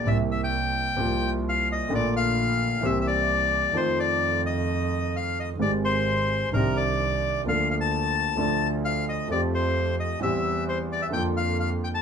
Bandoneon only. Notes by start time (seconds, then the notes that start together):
0.07 E5
0.31 E5
0.44 G5
1.49 F5
1.72 D#5
1.95 D5
2.16 F5
2.85 E5
3.01 E5
3.07 D5
3.76 C5
3.99 D5
4.46 D#5
5.16 F5
5.40 D#5
5.61 D5
5.85 C5
6.54 A#4
6.77 D5
7.48 F5
7.71 F5
7.81 A5
8.85 F5
9.09 D#5
9.31 D5
9.54 C5
10.00 D#5
10.23 E5
10.69 C5
10.92 D5
11.02 E5
11.13 G5
11.37 F5
11.60 F5
11.84 G5
11.95 A5